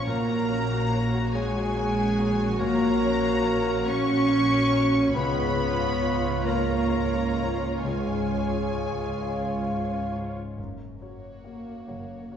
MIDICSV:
0, 0, Header, 1, 10, 480
1, 0, Start_track
1, 0, Key_signature, 6, "major"
1, 0, Tempo, 843882
1, 42, Time_signature, 6, 3, 24, 8
1, 1961, Tempo, 858369
1, 3401, Tempo, 911854
1, 5801, Tempo, 869565
1, 6787, End_track
2, 0, Start_track
2, 0, Title_t, "Violin section"
2, 0, Program_c, 0, 48
2, 44, Note_on_c, 0, 82, 93
2, 764, Note_off_c, 0, 82, 0
2, 766, Note_on_c, 0, 80, 93
2, 1468, Note_off_c, 0, 80, 0
2, 1480, Note_on_c, 0, 82, 92
2, 2196, Note_on_c, 0, 85, 95
2, 2198, Note_off_c, 0, 82, 0
2, 2911, Note_on_c, 0, 83, 86
2, 2913, Note_off_c, 0, 85, 0
2, 3618, Note_off_c, 0, 83, 0
2, 3631, Note_on_c, 0, 82, 80
2, 4338, Note_off_c, 0, 82, 0
2, 4351, Note_on_c, 0, 80, 64
2, 5539, Note_off_c, 0, 80, 0
2, 6042, Note_on_c, 0, 73, 33
2, 6746, Note_off_c, 0, 73, 0
2, 6757, Note_on_c, 0, 73, 38
2, 6787, Note_off_c, 0, 73, 0
2, 6787, End_track
3, 0, Start_track
3, 0, Title_t, "Violin section"
3, 0, Program_c, 1, 48
3, 40, Note_on_c, 1, 82, 96
3, 748, Note_off_c, 1, 82, 0
3, 762, Note_on_c, 1, 80, 85
3, 1477, Note_on_c, 1, 82, 109
3, 1480, Note_off_c, 1, 80, 0
3, 2182, Note_off_c, 1, 82, 0
3, 2199, Note_on_c, 1, 85, 99
3, 2911, Note_on_c, 1, 83, 101
3, 2914, Note_off_c, 1, 85, 0
3, 3618, Note_off_c, 1, 83, 0
3, 3632, Note_on_c, 1, 82, 75
3, 4354, Note_off_c, 1, 82, 0
3, 4360, Note_on_c, 1, 80, 75
3, 5564, Note_off_c, 1, 80, 0
3, 6045, Note_on_c, 1, 66, 38
3, 6748, Note_off_c, 1, 66, 0
3, 6760, Note_on_c, 1, 66, 34
3, 6787, Note_off_c, 1, 66, 0
3, 6787, End_track
4, 0, Start_track
4, 0, Title_t, "Clarinet"
4, 0, Program_c, 2, 71
4, 38, Note_on_c, 2, 70, 85
4, 595, Note_off_c, 2, 70, 0
4, 759, Note_on_c, 2, 68, 88
4, 1456, Note_off_c, 2, 68, 0
4, 1477, Note_on_c, 2, 70, 83
4, 2182, Note_off_c, 2, 70, 0
4, 2198, Note_on_c, 2, 73, 98
4, 2899, Note_off_c, 2, 73, 0
4, 2916, Note_on_c, 2, 71, 95
4, 3631, Note_on_c, 2, 70, 73
4, 3639, Note_off_c, 2, 71, 0
4, 4196, Note_off_c, 2, 70, 0
4, 4354, Note_on_c, 2, 68, 57
4, 5540, Note_off_c, 2, 68, 0
4, 6787, End_track
5, 0, Start_track
5, 0, Title_t, "French horn section"
5, 0, Program_c, 3, 60
5, 47, Note_on_c, 3, 73, 82
5, 48, Note_on_c, 3, 66, 87
5, 2894, Note_off_c, 3, 73, 0
5, 2895, Note_off_c, 3, 66, 0
5, 2911, Note_on_c, 3, 65, 80
5, 2913, Note_on_c, 3, 73, 77
5, 4331, Note_off_c, 3, 65, 0
5, 4332, Note_off_c, 3, 73, 0
5, 4350, Note_on_c, 3, 73, 61
5, 4352, Note_on_c, 3, 65, 63
5, 5602, Note_off_c, 3, 73, 0
5, 5603, Note_off_c, 3, 65, 0
5, 6787, End_track
6, 0, Start_track
6, 0, Title_t, "Harp"
6, 0, Program_c, 4, 46
6, 0, Note_on_c, 4, 53, 48
6, 0, Note_on_c, 4, 61, 56
6, 0, Note_on_c, 4, 65, 60
6, 0, Note_on_c, 4, 73, 53
6, 0, Note_on_c, 4, 77, 60
6, 0, Note_on_c, 4, 85, 56
6, 41, Note_on_c, 4, 46, 73
6, 61, Note_off_c, 4, 65, 0
6, 61, Note_off_c, 4, 77, 0
6, 62, Note_off_c, 4, 53, 0
6, 162, Note_on_c, 4, 58, 50
6, 280, Note_off_c, 4, 61, 0
6, 287, Note_on_c, 4, 61, 51
6, 401, Note_on_c, 4, 66, 56
6, 515, Note_off_c, 4, 73, 0
6, 522, Note_on_c, 4, 73, 57
6, 633, Note_off_c, 4, 66, 0
6, 640, Note_on_c, 4, 66, 61
6, 761, Note_on_c, 4, 78, 64
6, 875, Note_off_c, 4, 85, 0
6, 882, Note_on_c, 4, 85, 60
6, 997, Note_off_c, 4, 78, 0
6, 1004, Note_on_c, 4, 78, 57
6, 1117, Note_off_c, 4, 73, 0
6, 1124, Note_on_c, 4, 73, 64
6, 1236, Note_off_c, 4, 66, 0
6, 1243, Note_on_c, 4, 66, 61
6, 1355, Note_off_c, 4, 61, 0
6, 1361, Note_on_c, 4, 61, 60
6, 1474, Note_off_c, 4, 46, 0
6, 1480, Note_on_c, 4, 46, 80
6, 1592, Note_off_c, 4, 58, 0
6, 1599, Note_on_c, 4, 58, 52
6, 1713, Note_off_c, 4, 61, 0
6, 1832, Note_off_c, 4, 66, 0
6, 1839, Note_on_c, 4, 66, 59
6, 1954, Note_off_c, 4, 73, 0
6, 1960, Note_on_c, 4, 73, 62
6, 2072, Note_off_c, 4, 66, 0
6, 2188, Note_off_c, 4, 78, 0
6, 2195, Note_on_c, 4, 78, 65
6, 2309, Note_off_c, 4, 85, 0
6, 2315, Note_on_c, 4, 85, 66
6, 2426, Note_off_c, 4, 78, 0
6, 2432, Note_on_c, 4, 78, 59
6, 2546, Note_off_c, 4, 73, 0
6, 2553, Note_on_c, 4, 73, 61
6, 2674, Note_on_c, 4, 66, 59
6, 2792, Note_on_c, 4, 61, 61
6, 2910, Note_on_c, 4, 49, 73
6, 2931, Note_off_c, 4, 78, 0
6, 2933, Note_off_c, 4, 46, 0
6, 2933, Note_off_c, 4, 58, 0
6, 2933, Note_off_c, 4, 66, 0
6, 3032, Note_on_c, 4, 56, 48
6, 3149, Note_off_c, 4, 61, 0
6, 3156, Note_on_c, 4, 61, 49
6, 3278, Note_on_c, 4, 65, 53
6, 3395, Note_off_c, 4, 73, 0
6, 3402, Note_on_c, 4, 73, 50
6, 3510, Note_off_c, 4, 65, 0
6, 3517, Note_on_c, 4, 65, 51
6, 3634, Note_on_c, 4, 77, 52
6, 3746, Note_off_c, 4, 85, 0
6, 3753, Note_on_c, 4, 85, 50
6, 3864, Note_off_c, 4, 77, 0
6, 3870, Note_on_c, 4, 77, 52
6, 3984, Note_off_c, 4, 73, 0
6, 3990, Note_on_c, 4, 73, 48
6, 4104, Note_off_c, 4, 65, 0
6, 4110, Note_on_c, 4, 65, 46
6, 4221, Note_off_c, 4, 61, 0
6, 4227, Note_on_c, 4, 61, 49
6, 4345, Note_off_c, 4, 49, 0
6, 4352, Note_on_c, 4, 49, 56
6, 4468, Note_off_c, 4, 56, 0
6, 4474, Note_on_c, 4, 56, 40
6, 4589, Note_off_c, 4, 61, 0
6, 4711, Note_off_c, 4, 65, 0
6, 4717, Note_on_c, 4, 65, 44
6, 4833, Note_off_c, 4, 73, 0
6, 4840, Note_on_c, 4, 73, 45
6, 4952, Note_off_c, 4, 65, 0
6, 4959, Note_on_c, 4, 65, 42
6, 5073, Note_off_c, 4, 77, 0
6, 5079, Note_on_c, 4, 77, 49
6, 5191, Note_off_c, 4, 85, 0
6, 5197, Note_on_c, 4, 85, 43
6, 5310, Note_off_c, 4, 77, 0
6, 5317, Note_on_c, 4, 77, 43
6, 5433, Note_off_c, 4, 73, 0
6, 5439, Note_on_c, 4, 73, 44
6, 5552, Note_off_c, 4, 65, 0
6, 5558, Note_on_c, 4, 65, 44
6, 5682, Note_on_c, 4, 61, 43
6, 5798, Note_on_c, 4, 42, 40
6, 5817, Note_off_c, 4, 49, 0
6, 5817, Note_off_c, 4, 65, 0
6, 5817, Note_off_c, 4, 77, 0
6, 5818, Note_off_c, 4, 56, 0
6, 6033, Note_off_c, 4, 73, 0
6, 6039, Note_on_c, 4, 73, 29
6, 6277, Note_on_c, 4, 58, 30
6, 6511, Note_off_c, 4, 73, 0
6, 6518, Note_on_c, 4, 73, 36
6, 6758, Note_on_c, 4, 66, 33
6, 6787, Note_off_c, 4, 42, 0
6, 6787, Note_off_c, 4, 58, 0
6, 6787, Note_off_c, 4, 61, 0
6, 6787, Note_off_c, 4, 66, 0
6, 6787, Note_off_c, 4, 73, 0
6, 6787, Note_off_c, 4, 85, 0
6, 6787, End_track
7, 0, Start_track
7, 0, Title_t, "Viola section"
7, 0, Program_c, 5, 48
7, 39, Note_on_c, 5, 66, 70
7, 39, Note_on_c, 5, 73, 68
7, 2890, Note_off_c, 5, 66, 0
7, 2890, Note_off_c, 5, 73, 0
7, 2913, Note_on_c, 5, 73, 68
7, 2914, Note_on_c, 5, 65, 71
7, 5670, Note_off_c, 5, 65, 0
7, 5670, Note_off_c, 5, 73, 0
7, 6038, Note_on_c, 5, 58, 38
7, 6744, Note_off_c, 5, 58, 0
7, 6760, Note_on_c, 5, 58, 38
7, 6787, Note_off_c, 5, 58, 0
7, 6787, End_track
8, 0, Start_track
8, 0, Title_t, "Grand piano"
8, 0, Program_c, 6, 0
8, 0, Control_c, 6, 64, 127
8, 41, Note_on_c, 6, 46, 68
8, 51, Control_c, 6, 64, 0
8, 129, Control_c, 6, 64, 127
8, 163, Note_on_c, 6, 58, 51
8, 283, Note_on_c, 6, 61, 56
8, 355, Note_off_c, 6, 58, 0
8, 406, Note_on_c, 6, 66, 52
8, 475, Note_off_c, 6, 61, 0
8, 521, Note_on_c, 6, 73, 50
8, 596, Note_off_c, 6, 66, 0
8, 646, Note_on_c, 6, 66, 56
8, 714, Note_off_c, 6, 73, 0
8, 767, Note_on_c, 6, 73, 57
8, 838, Note_off_c, 6, 66, 0
8, 890, Note_on_c, 6, 66, 58
8, 958, Note_off_c, 6, 73, 0
8, 1003, Note_on_c, 6, 58, 52
8, 1080, Note_off_c, 6, 66, 0
8, 1125, Note_on_c, 6, 61, 55
8, 1195, Note_off_c, 6, 58, 0
8, 1248, Note_on_c, 6, 58, 56
8, 1315, Note_off_c, 6, 61, 0
8, 1360, Note_on_c, 6, 61, 54
8, 1436, Note_off_c, 6, 58, 0
8, 1457, Note_off_c, 6, 46, 0
8, 1481, Note_on_c, 6, 46, 75
8, 1492, Control_c, 6, 64, 0
8, 1551, Note_off_c, 6, 61, 0
8, 1598, Control_c, 6, 64, 127
8, 1601, Note_on_c, 6, 58, 50
8, 1719, Note_on_c, 6, 61, 60
8, 1792, Note_off_c, 6, 58, 0
8, 1839, Note_on_c, 6, 66, 50
8, 1912, Note_off_c, 6, 61, 0
8, 1957, Note_on_c, 6, 73, 52
8, 2031, Note_off_c, 6, 66, 0
8, 2067, Note_on_c, 6, 66, 57
8, 2149, Note_off_c, 6, 73, 0
8, 2193, Note_on_c, 6, 73, 53
8, 2264, Note_off_c, 6, 66, 0
8, 2312, Note_on_c, 6, 66, 54
8, 2386, Note_off_c, 6, 73, 0
8, 2429, Note_on_c, 6, 58, 53
8, 2505, Note_off_c, 6, 66, 0
8, 2549, Note_on_c, 6, 61, 53
8, 2623, Note_off_c, 6, 58, 0
8, 2673, Note_on_c, 6, 58, 56
8, 2743, Note_off_c, 6, 61, 0
8, 2786, Note_on_c, 6, 61, 57
8, 2865, Note_off_c, 6, 58, 0
8, 2892, Note_off_c, 6, 46, 0
8, 2908, Note_on_c, 6, 37, 69
8, 2910, Note_off_c, 6, 61, 0
8, 2924, Control_c, 6, 64, 0
8, 2999, Control_c, 6, 64, 127
8, 3034, Note_on_c, 6, 44, 48
8, 3158, Note_on_c, 6, 61, 54
8, 3229, Note_off_c, 6, 44, 0
8, 3279, Note_on_c, 6, 65, 46
8, 3352, Note_off_c, 6, 61, 0
8, 3398, Note_on_c, 6, 73, 48
8, 3470, Note_off_c, 6, 65, 0
8, 3514, Note_on_c, 6, 65, 44
8, 3585, Note_off_c, 6, 73, 0
8, 3626, Note_on_c, 6, 73, 47
8, 3702, Note_off_c, 6, 65, 0
8, 3745, Note_on_c, 6, 65, 44
8, 3819, Note_off_c, 6, 73, 0
8, 3865, Note_on_c, 6, 44, 43
8, 3938, Note_off_c, 6, 65, 0
8, 3983, Note_on_c, 6, 61, 45
8, 4060, Note_off_c, 6, 44, 0
8, 4102, Note_on_c, 6, 44, 46
8, 4180, Note_off_c, 6, 61, 0
8, 4226, Note_on_c, 6, 61, 42
8, 4301, Note_off_c, 6, 44, 0
8, 4330, Note_off_c, 6, 37, 0
8, 4348, Note_on_c, 6, 37, 55
8, 4364, Control_c, 6, 64, 0
8, 4424, Note_off_c, 6, 61, 0
8, 4439, Control_c, 6, 64, 127
8, 4477, Note_on_c, 6, 44, 37
8, 4593, Note_on_c, 6, 61, 41
8, 4671, Note_off_c, 6, 44, 0
8, 4714, Note_on_c, 6, 65, 38
8, 4789, Note_off_c, 6, 61, 0
8, 4837, Note_on_c, 6, 73, 38
8, 4910, Note_off_c, 6, 65, 0
8, 4962, Note_on_c, 6, 65, 38
8, 5031, Note_off_c, 6, 73, 0
8, 5087, Note_on_c, 6, 73, 38
8, 5152, Note_off_c, 6, 65, 0
8, 5201, Note_on_c, 6, 65, 39
8, 5275, Note_off_c, 6, 73, 0
8, 5321, Note_on_c, 6, 44, 38
8, 5393, Note_off_c, 6, 65, 0
8, 5440, Note_on_c, 6, 61, 36
8, 5513, Note_off_c, 6, 44, 0
8, 5560, Note_on_c, 6, 44, 38
8, 5634, Note_off_c, 6, 61, 0
8, 5681, Note_on_c, 6, 61, 37
8, 5752, Note_off_c, 6, 44, 0
8, 5775, Note_off_c, 6, 37, 0
8, 5796, Note_on_c, 6, 42, 37
8, 5799, Note_off_c, 6, 61, 0
8, 5810, Control_c, 6, 64, 0
8, 5893, Control_c, 6, 64, 127
8, 6032, Note_off_c, 6, 42, 0
8, 6041, Note_on_c, 6, 66, 31
8, 6044, Note_on_c, 6, 73, 34
8, 6260, Note_off_c, 6, 66, 0
8, 6261, Note_off_c, 6, 73, 0
8, 6277, Note_on_c, 6, 58, 27
8, 6280, Note_on_c, 6, 73, 29
8, 6282, Note_on_c, 6, 66, 28
8, 6498, Note_off_c, 6, 58, 0
8, 6499, Note_off_c, 6, 73, 0
8, 6500, Note_off_c, 6, 66, 0
8, 6516, Note_on_c, 6, 58, 28
8, 6518, Note_on_c, 6, 66, 27
8, 6520, Note_on_c, 6, 73, 30
8, 6735, Note_off_c, 6, 58, 0
8, 6735, Note_off_c, 6, 66, 0
8, 6737, Note_off_c, 6, 73, 0
8, 6759, Note_on_c, 6, 73, 31
8, 6760, Note_on_c, 6, 66, 31
8, 6787, Note_off_c, 6, 66, 0
8, 6787, Note_off_c, 6, 73, 0
8, 6787, End_track
9, 0, Start_track
9, 0, Title_t, "Cello section"
9, 0, Program_c, 7, 48
9, 41, Note_on_c, 7, 58, 97
9, 748, Note_off_c, 7, 58, 0
9, 764, Note_on_c, 7, 56, 97
9, 1479, Note_on_c, 7, 58, 99
9, 1481, Note_off_c, 7, 56, 0
9, 2184, Note_off_c, 7, 58, 0
9, 2194, Note_on_c, 7, 61, 106
9, 2912, Note_off_c, 7, 61, 0
9, 2912, Note_on_c, 7, 59, 102
9, 3618, Note_off_c, 7, 59, 0
9, 3629, Note_on_c, 7, 58, 88
9, 4337, Note_off_c, 7, 58, 0
9, 4353, Note_on_c, 7, 56, 74
9, 5540, Note_off_c, 7, 56, 0
9, 5795, Note_on_c, 7, 42, 47
9, 6426, Note_off_c, 7, 42, 0
9, 6519, Note_on_c, 7, 42, 49
9, 6787, Note_off_c, 7, 42, 0
9, 6787, End_track
10, 0, Start_track
10, 0, Title_t, "Double bass section"
10, 0, Program_c, 8, 48
10, 40, Note_on_c, 8, 34, 74
10, 2891, Note_off_c, 8, 34, 0
10, 2911, Note_on_c, 8, 37, 68
10, 5690, Note_off_c, 8, 37, 0
10, 5796, Note_on_c, 8, 30, 43
10, 6427, Note_off_c, 8, 30, 0
10, 6521, Note_on_c, 8, 30, 45
10, 6787, Note_off_c, 8, 30, 0
10, 6787, End_track
0, 0, End_of_file